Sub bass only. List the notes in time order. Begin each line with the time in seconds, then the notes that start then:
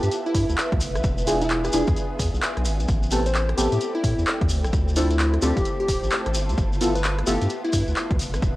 0.03 G2
0.35 G2
0.49 D2
0.72 D2
0.81 E1
0.95 B1
1.04 E1
1.73 E1
1.88 E2
2.19 E2
2.34 B1
2.57 B1
2.65 G#1
2.80 B1
2.88 A1
3.58 A1
3.72 A2
4.04 A2
4.18 E2
4.41 E2
4.50 D2
4.64 A1
4.73 D2
5.42 D2
5.57 D1
5.88 D1
6.03 A1
6.26 A1
6.35 G1
6.49 D2
6.58 G1
7.27 G1
7.42 G2
7.73 G2
7.88 D2
8.11 D2
8.19 E1
8.34 B1
8.42 E1